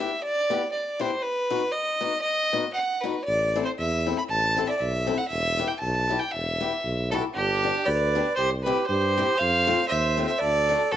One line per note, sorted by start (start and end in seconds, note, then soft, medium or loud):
0.00 0.10 E4 soft
0.00 0.10 G4 medium
0.00 0.22 E5 medium
0.24 0.70 D5 loud
0.50 0.60 B3 medium
0.50 0.61 E4 medium
0.50 0.61 G4 medium
0.72 1.02 D5 medium
0.99 1.10 B3 medium
0.99 1.11 E4 medium
0.99 1.11 G4 medium
0.99 1.24 C5 medium
1.22 1.73 B4 medium
1.50 1.61 B3 medium
1.50 1.61 D#4 soft
1.50 1.61 F#4 medium
1.72 2.21 D#5 medium
2.01 2.11 B3 medium
2.01 2.12 D#4 soft
2.01 2.12 F#4 medium
2.22 2.71 D#5 loud
2.53 2.63 B3 medium
2.53 2.63 D#4 soft
2.53 2.64 F#4 medium
2.74 3.02 F#5 medium
3.01 3.14 B3 medium
3.01 3.15 D#4 soft
3.01 3.15 F#4 medium
3.01 3.24 B4 medium
3.24 3.61 A1 medium
3.24 3.63 D5 loud
3.56 3.66 C4 medium
3.56 3.66 E4 medium
3.56 3.67 A4 soft
3.65 3.71 C5 medium
3.78 4.12 E2 medium
3.78 4.15 E5 medium
4.06 4.17 C4 medium
4.06 4.17 E4 medium
4.06 4.18 A4 medium
4.18 4.23 B5 medium
4.29 4.63 A1 medium
4.29 4.69 A5 loud
4.57 4.68 C4 medium
4.57 4.68 E4 medium
4.57 4.68 A4 medium
4.67 4.80 D5 medium
4.67 4.70 E5 soft
4.78 5.14 B1 medium
4.78 5.19 E5 medium
5.07 5.18 C4 medium
5.07 5.18 E4 medium
5.07 5.18 A4 medium
5.18 5.27 F#5 medium
5.28 5.64 E1 medium
5.28 5.69 E5 loud
5.58 5.69 B3 medium
5.58 5.69 E4 medium
5.58 5.69 G4 medium
5.68 5.79 G5 medium
5.80 6.16 B1 medium
5.80 6.21 A5 medium
6.09 6.20 B3 medium
6.09 6.20 E4 soft
6.09 6.21 G4 medium
6.19 6.33 G5 medium
6.32 6.67 E1 medium
6.32 7.11 E5 medium
6.60 6.71 B3 medium
6.60 6.71 E4 medium
6.60 6.72 G4 medium
6.85 7.18 B1 medium
7.11 7.23 B3 medium
7.11 7.23 E4 medium
7.11 7.24 F#4 medium
7.11 7.23 G4 medium
7.11 7.22 A4 medium
7.34 7.70 G1 medium
7.34 7.87 D4 medium
7.34 7.87 G4 loud
7.63 7.74 B3 medium
7.63 7.75 D4 soft
7.63 7.75 G4 soft
7.85 8.20 D2 loud
7.85 8.37 B4 medium
7.85 8.35 D5 medium
8.15 8.26 B3 medium
8.15 8.26 D4 soft
8.15 8.26 G4 medium
8.36 8.71 C2 medium
8.36 8.51 G4 medium
8.36 8.49 C5 loud
8.63 8.77 C4 medium
8.63 8.77 E4 medium
8.63 8.88 G4 medium
8.63 8.77 G4 medium
8.63 8.86 B4 medium
8.87 9.22 G2 medium
8.87 9.39 G4 medium
8.87 9.39 C5 loud
9.17 9.28 C4 medium
9.17 9.28 E4 medium
9.17 9.29 G4 medium
9.37 9.73 F2 medium
9.37 9.87 C5 medium
9.37 9.88 F5 loud
9.67 9.78 A3 medium
9.67 9.78 C4 medium
9.67 9.78 F4 medium
9.88 10.24 D#2 medium
9.88 10.26 C5 medium
9.88 10.26 E5 loud
10.17 10.28 A3 medium
10.17 10.29 C4 medium
10.17 10.29 F4 medium
10.27 10.42 C5 medium
10.27 10.40 E5 medium
10.39 10.75 D2 medium
10.39 10.93 A4 medium
10.39 10.93 D5 loud
10.69 10.80 A3 medium
10.69 10.80 D4 medium
10.69 10.80 F#4 medium
10.92 10.97 A1 medium
10.92 10.97 F#4 medium
10.92 10.97 A4 medium